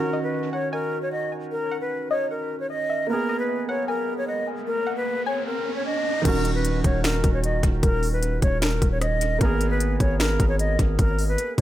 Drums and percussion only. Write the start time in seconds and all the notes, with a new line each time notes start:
6.25 kick, closed hi-hat, crash
6.45 closed hi-hat
6.65 closed hi-hat
6.84 kick, closed hi-hat
7.04 finger snap, snare, closed hi-hat
7.24 kick, closed hi-hat
7.44 closed hi-hat
7.63 kick, closed hi-hat
7.83 kick, closed hi-hat
8.03 open hi-hat
8.23 closed hi-hat
8.42 kick, closed hi-hat
8.62 finger snap, snare, closed hi-hat
8.82 kick, closed hi-hat
9.01 cross-stick, closed hi-hat
9.21 closed hi-hat
9.41 kick, closed hi-hat
9.61 closed hi-hat
9.80 closed hi-hat
10.00 kick, closed hi-hat
10.20 finger snap, snare, closed hi-hat
10.40 kick, closed hi-hat
10.59 closed hi-hat
10.79 kick, closed hi-hat
10.99 kick, closed hi-hat
11.19 open hi-hat
11.38 closed hi-hat